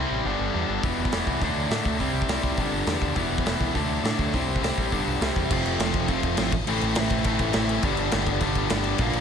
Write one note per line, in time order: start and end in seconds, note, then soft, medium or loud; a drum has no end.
0.00 0.25 C3 medium
0.00 0.25 G3 medium
0.00 0.24 C4 medium
0.00 0.24 E4 medium
0.11 0.19 A1 medium
0.25 0.34 G1 medium
0.25 0.54 G2 medium
0.25 0.54 D3 medium
0.25 0.54 G3 medium
0.25 0.53 B3 medium
0.25 0.52 D4 medium
0.40 0.48 G1 medium
0.54 0.63 E2 medium
0.54 0.83 G2 medium
0.54 0.82 D3 medium
0.54 0.82 G3 medium
0.54 0.82 B3 medium
0.54 0.82 D4 medium
0.69 0.77 G1 medium
0.83 0.92 E1 medium
0.83 1.13 E2 medium
0.83 1.13 B2 medium
0.83 1.13 E3 medium
0.83 1.13 G3 medium
0.83 1.12 B3 medium
0.83 1.12 E4 medium
0.83 kick loud
0.83 open hi-hat soft
0.98 1.07 E1 medium
1.05 kick medium
1.12 1.21 E1 medium
1.12 1.41 E2 medium
1.12 1.41 B2 medium
1.12 1.42 E3 medium
1.12 1.41 G3 medium
1.12 1.41 B3 medium
1.12 1.41 E4 medium
1.12 snare loud
1.12 open hi-hat medium
1.27 1.35 C2 medium
1.27 kick medium
1.41 1.50 D2 medium
1.41 1.71 D3 medium
1.41 1.71 F#3 medium
1.41 1.70 A3 medium
1.41 1.70 D4 medium
1.41 kick medium
1.41 open hi-hat soft
1.55 1.64 D2 medium
1.70 1.79 A2 medium
1.70 1.99 D3 medium
1.70 1.99 F#3 medium
1.70 1.99 A3 medium
1.70 1.99 D4 medium
1.70 snare loud
1.70 open hi-hat soft
1.85 2.00 D2 medium
1.85 kick medium
1.99 2.09 C2 medium
1.99 2.29 C3 medium
1.99 2.29 G3 loud
1.99 2.28 C4 medium
1.99 2.28 E4 loud
1.99 kick medium
1.99 open hi-hat medium
2.13 2.23 C2 medium
2.22 kick medium
2.29 2.38 C2 medium
2.29 2.58 C3 medium
2.29 2.57 G3 medium
2.29 2.58 C4 medium
2.29 2.57 E4 medium
2.29 snare loud
2.29 open hi-hat medium
2.43 2.52 C2 medium
2.43 kick medium
2.57 2.66 G1 medium
2.57 2.87 G2 medium
2.57 2.87 D3 medium
2.57 2.86 G3 medium
2.57 2.86 B3 medium
2.57 2.85 D4 loud
2.57 kick medium
2.57 open hi-hat soft
2.72 2.81 G1 medium
2.87 2.96 E2 medium
2.87 3.16 G2 medium
2.87 3.15 D3 medium
2.87 3.15 G3 medium
2.87 3.16 B3 medium
2.87 3.15 D4 medium
2.87 snare loud
2.87 open hi-hat medium
3.02 3.11 D#2 medium
3.02 kick medium
3.15 3.25 E1 medium
3.15 3.46 E2 medium
3.15 3.46 B2 medium
3.15 3.45 E3 medium
3.15 3.45 G3 medium
3.15 3.45 B3 loud
3.15 3.44 E4 loud
3.15 kick medium
3.15 open hi-hat soft
3.30 3.40 E1 medium
3.38 kick medium
3.44 3.54 E1 medium
3.44 3.75 E2 medium
3.44 3.75 B2 medium
3.44 3.74 E3 medium
3.44 3.74 G3 medium
3.44 3.74 B3 medium
3.44 3.74 E4 medium
3.44 snare loud
3.44 open hi-hat medium
3.60 3.69 C2 medium
3.60 kick medium
3.75 3.84 D2 medium
3.75 4.04 D3 medium
3.75 4.03 F#3 medium
3.75 4.03 A3 medium
3.75 4.03 D4 loud
3.75 kick medium
3.75 open hi-hat soft
3.89 3.98 D2 medium
4.04 4.13 A2 medium
4.04 4.33 D3 medium
4.04 4.33 F#3 medium
4.04 4.33 A3 medium
4.04 4.32 D4 medium
4.04 snare loud
4.04 open hi-hat soft
4.19 4.28 D2 medium
4.19 kick medium
4.34 4.43 C2 medium
4.34 4.63 C3 medium
4.34 4.62 G3 medium
4.34 4.62 C4 loud
4.34 4.61 E4 loud
4.34 kick medium
4.34 open hi-hat soft
4.47 4.56 C2 medium
4.56 kick medium
4.61 4.70 C2 medium
4.61 4.92 C3 medium
4.61 4.92 G3 medium
4.61 4.91 C4 medium
4.61 4.91 E4 medium
4.61 snare loud
4.61 open hi-hat medium
4.78 4.92 A1 medium
4.78 kick medium
4.92 5.01 G1 medium
4.92 5.20 G2 medium
4.92 5.20 D3 medium
4.92 5.20 G3 medium
4.92 5.21 B3 medium
4.92 5.21 D4 loud
4.92 kick medium
4.92 open hi-hat soft
5.07 5.16 B1 medium
5.21 5.30 C2 medium
5.21 5.49 C3 medium
5.21 5.49 G3 medium
5.21 5.50 C4 medium
5.21 5.50 E4 medium
5.21 snare loud
5.21 open hi-hat medium
5.36 5.45 E2 medium
5.36 kick medium
5.50 5.62 F1 medium
5.50 5.80 F2 medium
5.50 5.79 C3 medium
5.50 5.80 F3 medium
5.50 5.80 A3 medium
5.50 5.79 C4 loud
5.50 5.79 F4 loud
5.50 kick loud
5.50 crash loud
5.50 crash medium
5.65 5.76 F1 medium
5.65 crash medium
5.79 5.91 F1 medium
5.79 6.06 F2 medium
5.79 6.07 C3 medium
5.79 6.07 F3 medium
5.79 6.08 A3 medium
5.79 6.08 C4 medium
5.79 6.09 F4 medium
5.79 snare loud
5.79 crash medium
5.93 6.06 F1 medium
5.93 kick medium
5.93 crash medium
6.08 6.20 F1 loud
6.08 6.38 F2 loud
6.08 6.37 C3 loud
6.08 6.39 F3 medium
6.08 6.39 A3 loud
6.08 6.38 C4 loud
6.08 6.38 F4 loud
6.08 kick medium
6.08 crash medium
6.23 6.35 F1 medium
6.23 kick medium
6.23 crash medium
6.37 6.49 G#1 medium
6.37 6.52 F2 medium
6.37 6.52 C3 medium
6.37 6.52 F3 medium
6.37 6.52 A3 medium
6.37 6.52 C4 medium
6.37 6.52 F4 medium
6.37 snare loud
6.37 crash medium
6.52 6.64 A1 medium
6.52 kick loud
6.52 crash medium
6.67 6.79 A1 medium
6.67 6.98 A2 medium
6.67 6.97 E3 medium
6.67 6.97 A3 loud
6.67 6.97 C4 loud
6.67 6.96 E4 loud
6.67 crash medium
6.81 6.93 A1 medium
6.81 crash medium
6.95 7.08 A1 medium
6.95 7.24 A2 medium
6.95 7.25 E3 medium
6.95 7.25 A3 medium
6.95 7.26 C4 loud
6.95 7.26 E4 loud
6.95 snare loud
6.95 crash medium
7.10 7.22 A1 medium
7.10 kick medium
7.10 crash medium
7.24 7.36 A1 loud
7.24 7.56 A2 loud
7.24 7.55 E3 loud
7.24 7.55 A3 loud
7.24 7.55 C4 loud
7.24 7.55 E4 loud
7.24 kick medium
7.24 crash medium
7.39 7.51 A1 medium
7.39 kick medium
7.39 crash medium
7.53 7.77 A1 medium
7.53 7.83 E3 medium
7.53 7.83 A3 medium
7.53 7.83 C4 loud
7.53 7.83 E4 medium
7.53 snare loud
7.53 crash medium
7.57 7.82 A2 medium
7.69 crash medium
7.83 7.94 G1 medium
7.83 8.13 G2 loud
7.83 8.14 D3 loud
7.83 8.13 G3 loud
7.83 8.13 B3 loud
7.83 8.12 D4 loud
7.83 kick loud
7.83 crash medium
7.97 8.09 G1 medium
7.97 crash medium
8.11 8.24 G1 loud
8.11 8.40 G2 medium
8.11 8.40 D3 medium
8.11 8.41 G3 medium
8.11 8.41 B3 medium
8.11 8.41 D4 medium
8.11 snare loud
8.11 crash medium
8.27 8.38 G1 medium
8.27 kick medium
8.27 crash medium
8.41 8.52 G1 loud
8.41 8.71 G2 medium
8.41 8.71 D3 loud
8.41 8.71 G3 loud
8.41 8.71 B3 loud
8.41 8.70 D4 loud
8.41 kick medium
8.41 crash medium
8.55 8.67 G1 medium
8.55 kick medium
8.55 crash medium
8.70 8.93 G1 loud
8.70 8.99 G2 medium
8.70 8.99 D3 medium
8.70 8.99 G3 medium
8.70 8.99 B3 medium
8.70 8.99 D4 loud
8.70 snare loud
8.70 crash medium
8.84 crash medium
8.98 9.10 A#1 medium
8.98 9.21 A#2 medium
8.98 9.21 D3 loud
8.98 9.21 F3 loud
8.98 9.21 A#3 loud
8.98 9.21 D4 loud
8.98 kick loud
8.98 crash medium
9.13 9.21 A#1 medium
9.13 crash medium